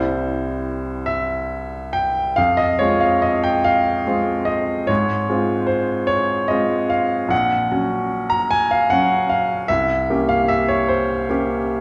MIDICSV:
0, 0, Header, 1, 2, 480
1, 0, Start_track
1, 0, Key_signature, -4, "minor"
1, 0, Tempo, 872093
1, 1308, Time_signature, 12, 3, 24, 8
1, 1784, Tempo, 826446
1, 2744, Tempo, 803213
1, 5144, Tempo, 789474
1, 6904, End_track
2, 0, Start_track
2, 0, Title_t, "Grand piano"
2, 0, Program_c, 0, 0
2, 0, Control_c, 0, 64, 127
2, 0, Note_on_c, 0, 36, 47
2, 0, Note_on_c, 0, 55, 34
2, 0, Note_on_c, 0, 60, 34
2, 0, Note_on_c, 0, 64, 34
2, 0, Note_on_c, 0, 72, 70
2, 583, Note_on_c, 0, 76, 66
2, 585, Note_off_c, 0, 72, 0
2, 1062, Note_on_c, 0, 79, 67
2, 1067, Note_off_c, 0, 76, 0
2, 1273, Note_off_c, 0, 36, 0
2, 1277, Note_off_c, 0, 55, 0
2, 1279, Note_off_c, 0, 60, 0
2, 1282, Note_off_c, 0, 64, 0
2, 1300, Note_on_c, 0, 77, 79
2, 1304, Note_off_c, 0, 79, 0
2, 1308, Note_on_c, 0, 41, 49
2, 1317, Control_c, 0, 64, 0
2, 1410, Control_c, 0, 64, 127
2, 1416, Note_on_c, 0, 75, 67
2, 1422, Note_off_c, 0, 77, 0
2, 1534, Note_on_c, 0, 73, 63
2, 1539, Note_off_c, 0, 41, 0
2, 1541, Note_off_c, 0, 75, 0
2, 1543, Note_on_c, 0, 56, 32
2, 1545, Note_on_c, 0, 60, 32
2, 1547, Note_on_c, 0, 65, 36
2, 1654, Note_on_c, 0, 77, 64
2, 1660, Note_off_c, 0, 73, 0
2, 1772, Note_on_c, 0, 75, 63
2, 1778, Note_off_c, 0, 77, 0
2, 1897, Note_on_c, 0, 79, 60
2, 1901, Note_off_c, 0, 75, 0
2, 2018, Note_on_c, 0, 77, 77
2, 2023, Note_off_c, 0, 79, 0
2, 2242, Note_off_c, 0, 56, 0
2, 2243, Note_off_c, 0, 60, 0
2, 2244, Note_off_c, 0, 65, 0
2, 2263, Note_on_c, 0, 56, 31
2, 2267, Note_on_c, 0, 60, 31
2, 2270, Note_on_c, 0, 65, 33
2, 2487, Note_on_c, 0, 75, 59
2, 2501, Note_off_c, 0, 77, 0
2, 2719, Note_off_c, 0, 56, 0
2, 2721, Note_off_c, 0, 60, 0
2, 2722, Note_off_c, 0, 65, 0
2, 2730, Note_on_c, 0, 73, 68
2, 2734, Note_off_c, 0, 75, 0
2, 2740, Note_on_c, 0, 44, 48
2, 2754, Control_c, 0, 64, 0
2, 2845, Control_c, 0, 64, 127
2, 2975, Note_off_c, 0, 44, 0
2, 2981, Note_on_c, 0, 56, 34
2, 2984, Note_on_c, 0, 60, 34
2, 2986, Note_on_c, 0, 65, 38
2, 3205, Note_on_c, 0, 72, 61
2, 3216, Note_off_c, 0, 73, 0
2, 3446, Note_on_c, 0, 73, 71
2, 3452, Note_off_c, 0, 72, 0
2, 3676, Note_off_c, 0, 56, 0
2, 3678, Note_off_c, 0, 60, 0
2, 3679, Note_off_c, 0, 65, 0
2, 3692, Note_on_c, 0, 75, 59
2, 3695, Note_off_c, 0, 73, 0
2, 3701, Note_on_c, 0, 56, 35
2, 3704, Note_on_c, 0, 60, 35
2, 3705, Note_on_c, 0, 65, 38
2, 3940, Note_on_c, 0, 77, 64
2, 3942, Note_off_c, 0, 75, 0
2, 4164, Note_off_c, 0, 56, 0
2, 4165, Note_off_c, 0, 60, 0
2, 4166, Note_off_c, 0, 65, 0
2, 4171, Note_on_c, 0, 34, 47
2, 4185, Note_off_c, 0, 77, 0
2, 4185, Note_on_c, 0, 78, 71
2, 4198, Control_c, 0, 64, 0
2, 4284, Control_c, 0, 64, 127
2, 4407, Note_off_c, 0, 34, 0
2, 4427, Note_on_c, 0, 54, 33
2, 4431, Note_on_c, 0, 61, 35
2, 4431, Note_on_c, 0, 66, 38
2, 4777, Note_on_c, 0, 82, 67
2, 4778, Note_off_c, 0, 78, 0
2, 4901, Note_off_c, 0, 82, 0
2, 4902, Note_on_c, 0, 80, 78
2, 5023, Note_off_c, 0, 80, 0
2, 5024, Note_on_c, 0, 77, 70
2, 5122, Note_off_c, 0, 54, 0
2, 5123, Note_off_c, 0, 66, 0
2, 5124, Note_off_c, 0, 61, 0
2, 5138, Note_on_c, 0, 78, 70
2, 5144, Note_off_c, 0, 77, 0
2, 5149, Note_on_c, 0, 54, 33
2, 5151, Note_on_c, 0, 61, 31
2, 5153, Note_on_c, 0, 66, 36
2, 5378, Note_on_c, 0, 77, 67
2, 5379, Note_off_c, 0, 78, 0
2, 5597, Note_off_c, 0, 54, 0
2, 5597, Note_off_c, 0, 61, 0
2, 5599, Note_off_c, 0, 66, 0
2, 5614, Note_on_c, 0, 76, 78
2, 5616, Note_off_c, 0, 77, 0
2, 5622, Note_on_c, 0, 36, 49
2, 5627, Control_c, 0, 64, 0
2, 5720, Control_c, 0, 64, 127
2, 5854, Note_off_c, 0, 36, 0
2, 5868, Note_on_c, 0, 58, 37
2, 5870, Note_on_c, 0, 61, 36
2, 5871, Note_on_c, 0, 67, 40
2, 5979, Note_off_c, 0, 76, 0
2, 5981, Note_on_c, 0, 77, 67
2, 6101, Note_on_c, 0, 76, 74
2, 6103, Note_off_c, 0, 77, 0
2, 6223, Note_on_c, 0, 73, 60
2, 6224, Note_off_c, 0, 76, 0
2, 6344, Note_on_c, 0, 72, 61
2, 6346, Note_off_c, 0, 73, 0
2, 6568, Note_off_c, 0, 58, 0
2, 6569, Note_off_c, 0, 61, 0
2, 6570, Note_off_c, 0, 67, 0
2, 6587, Note_off_c, 0, 72, 0
2, 6594, Note_on_c, 0, 58, 36
2, 6596, Note_on_c, 0, 61, 35
2, 6600, Note_on_c, 0, 67, 37
2, 6904, Note_off_c, 0, 58, 0
2, 6904, Note_off_c, 0, 61, 0
2, 6904, Note_off_c, 0, 67, 0
2, 6904, End_track
0, 0, End_of_file